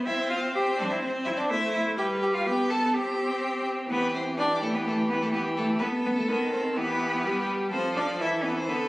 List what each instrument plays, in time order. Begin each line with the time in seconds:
0.05 viola C4, cello E4, violin C5 E5
0.29 cello F4, violin F5
0.54 cello G4, violin C5 G5
0.78 cello D4, violin D5
0.90 cello E4, violin E5
1.02 cello C4, violin C5
1.25 cello E4, violin E5
1.37 cello D4, violin D5
1.50 viola A3, cello E4, violin C5 E5
1.73 cello E4, violin E5
1.98 viola G3, cello G4, violin B4 G5
2.22 cello G4, violin G5
2.34 cello F4, violin F5
2.46 viola B3, cello G4, violin B4 G5
2.70 cello A4, violin A4 A5
2.94 viola C4, cello G4, violin G4 G5
3.90 viola E3, cello B3, violin G4 B4
4.13 cello C4, violin C5
4.38 cello D4, violin D5
4.62 cello A3, violin A4
4.74 cello B3, violin B4
4.86 cello A3, violin A4
5.09 cello B3, violin B4
5.22 cello A3, violin A4
5.33 cello B3, violin G4 B4
5.57 cello A3, violin A4
5.79 cello B3, viola B3, violin A4 B4
6.04 cello B3, violin B4
6.16 cello A3, violin A4
6.28 viola D#3, cello B3, violin A4 B4
6.53 cello C4, violin C5
6.76 viola E3, cello B3, violin G4 B4
7.25 viola G3
7.72 viola F3, cello C4, violin A4 C5
7.96 cello D4, violin D5
8.20 viola E3, cello E4, violin E5
8.44 cello B3, violin B4
8.57 cello C4, violin C5
8.68 viola D3, cello B3, violin A4 B4